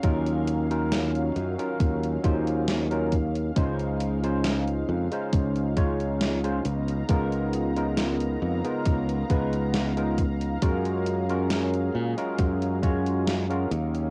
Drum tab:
HH |xxxxxxxxxxxxxxxx|xxxxxx-xxxxxxxxx|xxxxxx-xxxxxxxxx|xxxxxx-xxxxxxxxx|
SD |----o-------o---|----o-------o---|----o-------o---|----o-------o---|
BD |o-------o-o---o-|o-------o-o-----|o-------o-o---o-|o-------o-o-----|